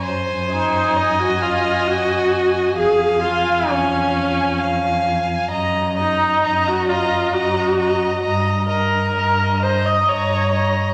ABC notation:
X:1
M:3/4
L:1/16
Q:1/4=66
K:Ebdor
V:1 name="Violin"
a12 | a4 f4 a4 | b2 b2 b2 b2 b2 b2 | b2 b2 b2 b2 b2 b2 |]
V:2 name="Violin"
c4 e8 | f4 a4 f4 | e2 e2 e2 e2 e2 e2 | e2 e2 e2 e2 e2 e2 |]
V:3 name="Viola"
z2 E3 G F2 G4 | A2 F2 D6 z2 | z2 E3 G F2 G4 | z2 B4 c e d4 |]
V:4 name="Cello" clef=bass
G,,12 | F,,12 | G,,4 G,,4 G,,4 | =G,,4 G,,4 G,,4 |]